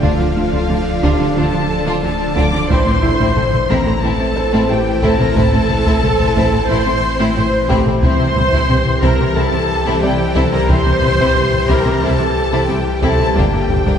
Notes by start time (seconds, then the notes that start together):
Already playing: D1 D3 F3 D4 A4 A#4 D5
0.02 D2 D3 D4 F4 F5, taiko
0.19 D3 F3 D4 F4
0.36 D2 D3 A3 D4 F4
0.53 D3 D4 F4, taiko
0.69 D2 D3 D4 F4
1.03 D2 D3 D4 F4 G4, taiko
1.20 D3 D4 F4
1.36 D2 D3 D4 F4 A4 A5
1.53 D3 F3 D4 F4
1.86 D3 D4 F4
2.03 D2 D3 A3 D4 F4 A4 A5
2.36 D2 D3 D4 F4 D5 D6, taiko
2.53 D3 D4 F4
2.69 A1 A2 E3 A3 C4 E4 C5 C6, taiko
2.87 A2 C4 E4
3.02 A1 A2 A3 C4 E4, taiko low-mid
3.20 A2 A3 C4 E4, taiko
3.36 A1 A2 C4 E4 A4, taiko low-mid
3.53 taiko low-mid
3.69 A1 A2 A3 A#3 C4 E4 A#5, taiko
3.86 A2 C4 E4 A4
4.02 A1 A2 A3 C4 E4 A4 A5
4.20 A2 C4 E4
4.36 C5
4.53 A2 A3 C4 E4
4.70 A1 A2 C4 E4 G4 G5
5.02 A1 A2 A3 C4 E4 A4 A5, taiko
5.19 A2 C4 E4 A4 A#4 A#5, taiko low-mid
5.35 A1 A2 A3 C4 E4 A4 A5, taiko
5.53 A2 C4 E4
5.69 A1 A2 C4 E4, taiko low-mid
5.86 A2 A3 C4 E4, taiko
6.03 A1 A2 C4 E4 A4, taiko low-mid
6.20 taiko low-mid
6.36 A1 A2 A3 C4 E4, taiko
6.53 A2 C4 E4 A4
6.69 A1 A2 A3 C4 E4 C5 C6
6.86 A2 C4 E4
7.20 A2 A3 C4 E4
7.36 A1 A2 C4 E4 C5 C6
7.69 A1 A2 A3 C4 E4 G4 G5, taiko
7.86 A2 C4 E4 A4, taiko low-mid
8.02 C2 C3 E3 G3 C4 E4 G4 C5 C6, taiko
8.19 C3 E3 C4 E4
8.36 C2 C3 G3 C4 E4, taiko low-mid
8.52 C3 C4 E4, taiko
8.69 C2 C3 C4 E4 G4, taiko low-mid
8.86 taiko low-mid
9.02 C2 C3 C4 E4 A#4 A#5, taiko
9.20 C3 C4 E4
9.35 C2 C3 C4 E4 A4 A5
9.52 C3 E3 C4 E4
9.86 C3 C4 E4
10.02 C2 C3 G3 C4 E4 G4 D5 G5
10.35 C2 C3 C4 E4 A4 A5, taiko
10.52 C3 C4 E4 A#4 A#5, taiko low-mid
10.68 C2 C3 C4 E4 C5 C6, taiko
10.85 C3 E3 C4 E4
11.02 C2 C3 G3 C4 E4, taiko low-mid
11.19 C3 C4 E4, taiko
11.35 C2 C3 C4 E4, taiko low-mid
11.53 taiko low-mid
11.69 C2 C3 C4 E4 G4 A#4 A#5, taiko
11.85 C3 C4 E4
12.02 C2 C3 C4 E4 A4 A5
12.19 C3 E3 C4 E4
12.52 C3 C4 E4
12.69 C2 C3 G3 C4 E4 G4 G5
13.02 C2 C3 C4 E4 A4 A5, taiko
13.19 C3 C4 E4, taiko low-mid
13.35 G1 G2 D3 G3 A#3 D4 G4 D5 G5, taiko
13.52 G2 A#3 D4
13.69 G1 G2 A#3 D4, taiko low-mid
13.85 G2 G3 A#3 D4, taiko